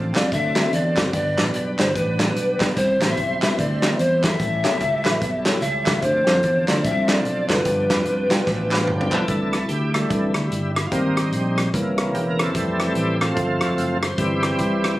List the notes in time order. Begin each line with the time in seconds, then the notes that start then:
Already playing: A1 F3 C4 D4 A4
0.15 C2 C4 F4 A4 D5 F5, snare, clap, closed hi-hat
0.31 D2 D3 F#3 C4 D4 A4 E5, kick, closed hi-hat
0.56 C4 F#4 A4 D5, snare, clap, closed hi-hat
0.73 E2 D5, closed hi-hat
0.97 F#1 C4 F#4 A4 D5, kick, snare, clap, closed hi-hat
1.12 G1 G2 G3 B3 D4 B4 D5, kick, closed hi-hat
1.37 A1 B3 D4 G4 D5, snare, clap, closed hi-hat
1.54 B1 D5, closed hi-hat
1.78 G1 B3 D4 G4 C5 D5, snare, clap, closed hi-hat
1.96 A1 B4, kick, closed hi-hat
2.19 B3 D4 G4 D5, snare, clap, closed hi-hat
2.36 B1, closed hi-hat
2.60 B1 B3 D4 G4 D5, kick, snare, clap, closed hi-hat
2.76 C2 C3 G3 C4 E4 C5, kick, closed hi-hat
3.01 A1 B3 E4 G4 C5, snare, clap, closed hi-hat
3.10 E5
3.17 B1, kick, closed hi-hat
3.42 C2 B3 E4 G4 B4 E5, snare, clap, closed hi-hat
3.58 D2 D5, kick, closed hi-hat
3.82 B3 E4 G4 D5, snare, clap, closed hi-hat
3.99 E2 C5, closed hi-hat
4.23 B3 E4 G4 A4 E5, kick, snare, clap, closed hi-hat
4.39 A1 A2 G3 C4 E4 A4, kick, closed hi-hat
4.45 C#4
4.64 B1 A3 E4 G4 C#5, snare, clap, closed hi-hat
4.80 C#2, kick, closed hi-hat
5.05 A1 A3 E4 G4 B4, snare, clap, closed hi-hat
5.22 B1, kick, closed hi-hat
5.46 A3 E4 G4 C#5, snare, clap, closed hi-hat
5.61 C#2 E5, closed hi-hat
5.86 C#2 A3 E4 G4 E5, kick, snare, clap, closed hi-hat
6.02 D2 D3 F3 C4 D4 G#4 C5, kick, closed hi-hat
6.09 A4
6.27 F2 A3 D4 F4 C5, snare, clap, closed hi-hat
6.43 E2, kick, closed hi-hat
6.68 D2 A3 D4 F4 C5 D5, snare, clap, closed hi-hat
6.84 C2 E5, kick, closed hi-hat
7.08 A3 D4 F4 D5, snare, clap, closed hi-hat
7.25 B1, closed hi-hat
7.49 F#1 A3 D4 F4 A4 B4, kick, snare, clap, closed hi-hat
7.65 G1 G2 F3 B3 D4 G4, kick, closed hi-hat
7.90 F1 G3 D4 F4 B4, snare, clap, closed hi-hat
8.05 C2, closed hi-hat
8.31 B1 G3 D4 F4 G4 D5, snare, clap, closed hi-hat
8.46 A1 E5, kick, snare
8.71 G3 D4 F4 B4, snare, clap
8.80 F5
8.87 G1 G4 G5, mid tom
9.01 floor tom
9.11 B1 G3 D4 E4 F4 A4 B4, clap
9.28 C2 D3 E3 A3, kick, closed hi-hat
9.53 cross-stick, closed hi-hat
9.69 D2 G4, closed hi-hat
9.94 G3 A3 E4, cross-stick, closed hi-hat
10.10 C2 D3 E3 A3, kick, closed hi-hat
10.34 D2, cross-stick, closed hi-hat
10.51 G1, closed hi-hat
10.75 E4, cross-stick, closed hi-hat
10.87 F4
10.91 G#1 C3 G3 A#3 C4 D#4, kick, closed hi-hat
11.17 cross-stick, closed hi-hat
11.32 A#1, closed hi-hat
11.58 cross-stick, closed hi-hat
11.73 C2 C#3 E3 A#3, kick, closed hi-hat
11.98 cross-stick, closed hi-hat
12.14 E1 G4, closed hi-hat
12.31 A#4
12.39 C4 E4 A4, cross-stick, closed hi-hat
12.55 F1 E3 G3 A3, kick, closed hi-hat
12.80 cross-stick, closed hi-hat
12.95 A1 G4, closed hi-hat
13.21 C4 F4 A4, cross-stick, closed hi-hat
13.34 G1 F3 A3 C4, kick, closed hi-hat
13.61 F1, cross-stick, closed hi-hat
13.77 F#1, closed hi-hat
14.02 C5, cross-stick, closed hi-hat
14.18 G1 E3 G3 C4 E4 G4, kick, closed hi-hat
14.43 cross-stick, closed hi-hat
14.58 C2, kick, closed hi-hat
14.84 cross-stick, closed hi-hat